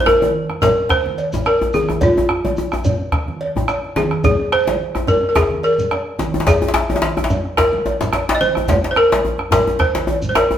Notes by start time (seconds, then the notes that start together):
0.00 C5
0.06 A#4, bombo rim, djembe slap, djembe tone
0.07 djembe tone
0.22 cowbell, high conga, djembe tone
0.49 bombo rim, djembe tone, high conga
0.62 A#4, cowbell, djembe slap, djembe bass, low conga, shekere
0.78 bombo rim
0.89 C5, bombo rim, bombo low, djembe slap, djembe tone, high conga, shekere
1.06 high conga
1.18 cowbell, shekere
1.33 high conga, djembe tone, djembe bass, low conga, shekere
1.46 A#4, bombo rim, cowbell, djembe tone
1.61 djembe tone
1.73 G#4, high conga, djembe tone, shekere
1.89 bombo rim, djembe tone
2.01 F4, bombo low, cowbell, djembe slap, low conga, djembe bass, shekere
2.17 high conga, djembe tone
2.29 bombo rim, djembe slap, djembe tone
2.44 cowbell, high conga, djembe tone
2.57 djembe tone, shekere
2.72 bombo rim, djembe tone, shekere
2.84 cowbell, high conga, low conga, djembe bass, shekere
3.12 bombo rim, bombo low, djembe slap, djembe tone, high conga
3.27 bombo rim, high conga
3.41 cowbell
3.55 djembe slap, djembe tone, djembe bass, low conga
3.68 bombo rim, cowbell, djembe tone, shekere
3.84 high conga
3.96 G#4, djembe slap, high conga, shekere
4.11 bombo rim, djembe tone
4.24 G#4, bombo low, cowbell, djembe slap, djembe tone, djembe bass, low conga, shekere
4.52 C5, bombo rim, djembe slap, djembe tone
4.67 cowbell, djembe slap, high conga
4.95 bombo rim, djembe tone
5.07 A#4, cowbell, low conga, djembe bass, shekere
5.23 bombo rim
5.29 A#4
5.35 G#4, bombo rim, bombo low, djembe slap, high conga, djembe tone, shekere
5.50 high conga
5.63 A#4, cowbell, shekere
5.78 low conga, djembe bass, shekere
5.91 bombo rim, cowbell, djembe tone
6.19 djembe slap, high conga, shekere
6.34 djembe tone
6.40 djembe slap
6.46 G#4, bombo low, cowbell, djembe slap, low conga, djembe bass, shekere
6.62 djembe tone
6.68 djembe slap
6.74 bombo rim, djembe slap, djembe tone
6.90 cowbell, high conga, djembe tone
6.96 djembe slap
7.02 djembe slap
7.17 bombo rim, djembe tone, high conga
7.24 djembe slap
7.30 cowbell, djembe bass, low conga, shekere
7.45 bombo rim
7.57 A#4, bombo rim, bombo low, djembe slap, djembe tone, shekere
7.73 high conga
7.85 cowbell, djembe tone, shekere
8.01 djembe slap, high conga, low conga, djembe bass, shekere
8.13 bombo rim, cowbell, djembe slap, djembe tone
8.29 djembe slap
8.35 D#5
8.41 C5, high conga, shekere
8.55 bombo rim, djembe tone
8.68 bombo low, cowbell, djembe slap, djembe bass, low conga, shekere
8.84 djembe slap
8.91 C5
8.96 A#4, bombo rim, djembe slap, djembe tone
9.12 cowbell, djembe slap, high conga
9.25 djembe tone
9.38 bombo rim, djembe tone, high conga
9.51 A#4, cowbell, djembe slap, djembe bass, low conga, shekere
9.67 bombo rim, djembe tone
9.79 C5, bombo rim, bombo low, djembe slap, djembe tone, high conga, shekere
9.95 djembe slap, high conga
10.07 cowbell, djembe tone, shekere
10.22 high conga, djembe bass, low conga, shekere
10.29 C5
10.35 A#4, bombo rim, cowbell, djembe slap, djembe tone
10.51 djembe tone